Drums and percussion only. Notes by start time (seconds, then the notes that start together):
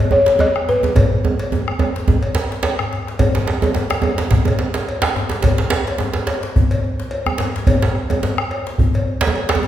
0.00 cowbell, djembe tone
0.11 djembe slap, djembe tone
0.26 djembe slap
0.28 djembe slap
0.39 cowbell, djembe slap, djembe tone
0.56 bombo rim
0.69 bombo rim, djembe slap, djembe tone
0.83 djembe slap, djembe tone
0.96 bombo low, cowbell, djembe slap, djembe tone, djembe bass
1.25 djembe tone
1.39 cowbell, djembe slap
1.52 djembe tone
1.68 bombo rim
1.79 bombo rim, cowbell, djembe tone
1.96 djembe slap
2.08 bombo low, djembe slap, djembe tone, djembe bass
2.23 bombo rim, cowbell, djembe slap, djembe tone
2.35 djembe slap
2.37 djembe slap
2.51 bombo rim, djembe slap
2.63 cowbell, djembe slap
2.79 bombo rim, djembe bass
2.93 bombo rim, djembe slap
3.07 bombo rim, djembe slap
3.19 bombo low, cowbell, djembe tone, djembe bass
3.35 djembe slap
3.47 bombo rim, djembe slap
3.62 cowbell, djembe slap, djembe tone
3.74 djembe slap, djembe tone
3.90 bombo rim, djembe slap
4.02 cowbell, djembe tone
4.18 djembe slap
4.31 bombo low, djembe slap, djembe bass
4.45 djembe slap, djembe tone
4.47 cowbell, djembe tone
4.59 djembe slap
4.74 djembe slap
4.89 cowbell, djembe slap
5.02 bombo rim, djembe slap
5.16 bombo rim, djembe slap, djembe tone
5.29 djembe slap
5.31 djembe slap
5.42 bombo low, cowbell, djembe slap, djembe bass
5.58 djembe slap
5.70 djembe slap
5.87 cowbell, djembe slap
5.98 djembe slap, djembe tone
6.13 djembe slap
6.27 cowbell, djembe slap
6.43 djembe slap
6.56 bombo low, djembe bass
6.71 cowbell, djembe slap, djembe tone
6.85 djembe slap
7.00 djembe slap
7.11 cowbell, djembe slap
7.26 bombo rim, djembe tone
7.38 bombo rim, djembe slap
7.40 djembe slap, djembe tone
7.56 djembe slap
7.67 bombo low, cowbell, djembe tone, djembe bass
7.82 djembe slap
7.95 bombo rim
8.10 cowbell, djembe slap, djembe tone
8.23 djembe slap, djembe tone
8.38 bombo rim
8.51 cowbell
8.67 djembe slap
8.78 bombo low, djembe bass
8.94 cowbell, djembe slap, djembe tone
9.07 djembe slap
9.21 djembe slap
9.23 djembe slap
9.27 djembe tone
9.35 cowbell, djembe slap
9.49 bombo rim, djembe slap
9.55 djembe tone
9.63 bombo rim, djembe slap, djembe tone